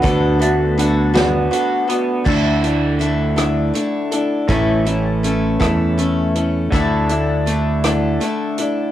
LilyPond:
<<
  \new Staff \with { instrumentName = "Grand piano" } { \time 6/8 \key d \major \tempo 4. = 54 <d' fis' b'>2. | \key a \mixolydian r2. | r2. | r2. | }
  \new Staff \with { instrumentName = "Steel-string acoustic guitar" } { \time 6/8 \key d \major <d b d' fis' a'>8 <d' fis' a'>8 <b d' fis' a'>8 <d b d' fis' a'>8 <b d' fis' a'>8 <d' fis' a'>8 | \key a \mixolydian <d a d' e' a'>8 <d' e' a'>8 <a d' e' a'>8 <d a d' e' a'>8 <a d' e' a'>8 <d' e' a'>8 | <a, e a cis' e' a'>8 <a cis' e' a'>8 <a cis' e' a'>8 <a, e a cis' e' a'>8 <a cis' e' a'>8 <a cis' e' a'>8 | <d a d' e' a'>8 <d' e' a'>8 <a d' e' a'>8 <d a d' e' a'>8 <a d' e' a'>8 <d' e' a'>8 | }
  \new Staff \with { instrumentName = "Clean electric guitar" } { \time 6/8 \key d \major <d b fis'>8 a8 d8 b8 fis'8 b8 | \key a \mixolydian <d a d' e'>2. | <a, e a cis' e'>2. | <d a d' e'>2. | }
  \new Staff \with { instrumentName = "Fingered electric bass" } { \clef bass \time 6/8 \key d \major d,2 r4 | \key a \mixolydian d,2 r4 | a,,4. e,4. | d,2 r4 | }
  \new DrumStaff \with { instrumentName = "Drums" } \drummode { \time 6/8 <hh bd>8 hh8 hh8 <hh sn>8 hh8 hh8 | <cymc bd>8 hh8 hh8 <hh ss>8 hh8 hh8 | <hh bd>8 hh8 hh8 <hh bd ss>8 hh8 hh8 | <hh bd>8 hh8 hh8 <hh ss>8 hh8 hh8 | }
>>